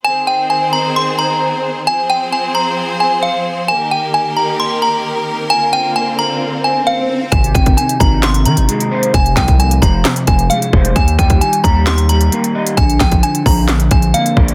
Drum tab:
HH |----------------|----------------|----------------|----------------|
CP |----------------|----------------|----------------|----------------|
SD |----------------|----------------|----------------|----------------|
BD |----------------|----------------|----------------|----------------|

HH |xxxxxxx-xxxxxx-x|xxxxxxx-xxxxxx-x|xxxxxxx-xxxxxx-x|xxxxxxo-xxxxxx-x|
CP |--------x-------|--x-----x-------|--------x-------|--x-----x-------|
SD |--------o-------|--o-----o-------|--------o-------|--o-----o-------|
BD |o-oo--o---------|o-oo--o---o---o-|o-oo--o---------|o-oo--o---o---o-|